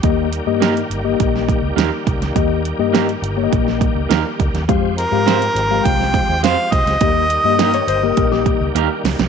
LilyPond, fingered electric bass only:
\new Staff \with { instrumentName = "Fingered electric bass" } { \clef bass \time 4/4 \key ees \mixolydian \tempo 4 = 103 ees,8. g,8. g,,8 bes,,8. des,16 ees,16 r16 c,16 des,16 | ees,8. g,8. g,,8 bes,,8. des,16 ees,16 r16 des,16 ees,16 | f,8. aes,8. aes,,8 c,8. ees,16 f,16 r16 c,16 des,16 | ees,8. g,8. g,,8 bes,,8. des,16 ees,16 r16 des,16 c,16 | }